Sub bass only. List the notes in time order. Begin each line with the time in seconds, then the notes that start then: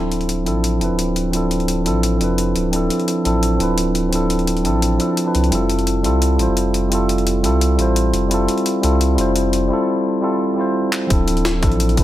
Already playing: D1
0.46 A1
0.81 F1
0.90 D1
1.86 A1
2.21 F1
2.56 D1
3.25 A1
3.60 D1
4.65 A1
5.35 C2
5.52 F1
6.05 C2
6.39 A1
6.49 F1
7.44 C2
7.79 A1
8.14 F1
8.83 C2
9.18 F1
11.10 D1
11.63 A1
11.98 F1